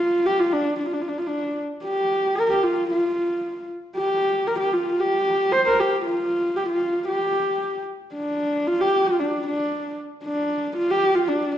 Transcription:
0.00 0.27 F4 medium
0.26 0.41 G4 medium
0.40 0.54 F4 medium
0.53 0.77 D4 medium
0.78 0.88 D4 medium
0.86 0.95 F4 medium
0.93 1.03 D4 medium
1.02 1.10 F4 medium
1.08 1.19 D4 medium
1.18 1.28 F4 medium
1.27 1.58 D4 medium
1.83 2.37 G4 medium
2.36 2.47 A#4 loud
2.47 2.65 G4 medium
2.47 2.51 A#4 medium
2.63 2.89 F4 medium
2.90 3.65 F4 medium
3.96 4.48 G4 medium
4.47 4.58 A#4 medium
4.59 4.74 G4 medium
4.73 5.01 F4 medium
5.00 5.54 G4 medium
5.52 5.65 C5 loud
5.65 5.81 A#4 medium
5.65 5.67 C5 medium
5.80 6.04 G4 medium
6.05 6.58 F4 medium
6.56 6.69 G4 medium
6.69 7.06 F4 medium
7.08 7.83 G4 medium
8.14 8.69 D4 medium
8.67 8.82 F4 medium
8.81 9.08 G4 medium
9.07 9.21 F4 medium
9.20 9.46 D4 medium
9.47 9.95 D4 medium
10.24 10.73 D4 medium
10.76 10.92 F4 medium
10.90 11.16 G4 medium
11.15 11.30 F4 medium
11.28 11.55 D4 medium

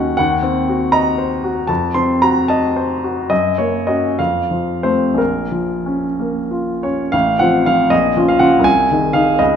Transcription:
0.00 0.15 D#2 soft
0.00 0.21 C#4 soft
0.00 0.16 D#4 soft
0.00 0.16 F#4 soft
0.00 0.16 F#5 medium
0.17 1.65 D#2 soft
0.17 0.93 F#5 medium
0.43 0.84 C4 soft
0.69 1.09 F#4 soft
0.92 1.33 D#5 soft
0.92 1.68 A#5 medium
1.18 1.59 C5 soft
1.44 1.69 F#4 soft
1.67 3.26 F2 medium
1.67 1.94 A5 medium
1.94 2.38 C4 soft
1.94 2.22 C6 medium
2.22 2.65 F#4 soft
2.22 2.49 A#5 medium
2.48 2.92 D#5 soft
2.48 3.30 A5 medium
2.76 3.19 C5 soft
3.04 3.31 F#4 soft
3.30 4.16 F#2 soft
3.30 3.58 D#5 medium
3.58 4.06 A#3 soft
3.58 3.87 C#5 medium
3.87 4.16 C#4 soft
3.87 4.15 F#4 soft
3.87 4.18 D#5 medium
4.19 5.16 F2 soft
4.19 4.84 F5 medium
4.51 5.05 F3 soft
4.83 5.15 A3 soft
4.83 5.15 C4 soft
4.83 5.18 C5 medium
5.14 7.07 A#1 soft
5.18 6.84 A#4 medium
5.52 6.06 F3 soft
5.86 6.38 C#4 soft
6.19 6.71 A#3 soft
6.51 7.02 F4 soft
6.83 7.14 C#4 soft
6.83 7.13 C#5 soft
7.12 7.39 A1 soft
7.12 7.39 F5 medium
7.39 7.64 F3 soft
7.39 7.64 C4 soft
7.39 7.64 F4 soft
7.39 7.66 F#5 medium
7.66 7.89 F3 soft
7.66 7.90 C4 soft
7.66 7.90 F4 soft
7.66 7.92 F5 medium
7.90 8.15 A#1 soft
7.90 8.28 D#5 medium
8.17 8.38 F3 soft
8.17 8.38 C#4 soft
8.17 8.39 F4 soft
8.28 8.41 F5 medium
8.39 8.63 F3 soft
8.39 8.63 C#4 soft
8.39 8.63 F4 soft
8.39 8.65 F#5 medium
8.59 8.86 C2 soft
8.64 9.14 G#5 medium
8.91 9.13 D#3 soft
8.91 9.13 D#4 soft
8.91 9.14 G#4 soft
9.13 9.37 D#3 soft
9.13 9.37 D#4 soft
9.13 9.37 G#4 soft
9.13 9.39 F5 medium
9.39 9.56 C#2 soft
9.39 9.56 D#5 medium

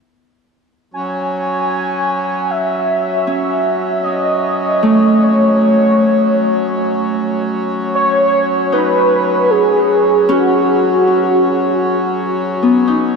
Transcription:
0.94 13.16 F#3 medium
0.94 13.16 C#4 medium
0.94 2.52 G#5 loud
2.50 4.05 E5 loud
3.27 6.17 C#4 medium
4.03 5.24 D#5 medium
4.83 8.16 A3 medium
5.23 5.61 C#5 medium
5.63 6.36 C#5 medium
7.95 8.69 C#5 loud
8.72 11.43 D#4 medium
8.72 9.52 B4 loud
9.50 10.32 G#4 loud
10.29 13.16 C#4 medium
10.29 12.63 F#4 medium
12.63 13.16 B3 soft
12.88 13.16 D#4 medium

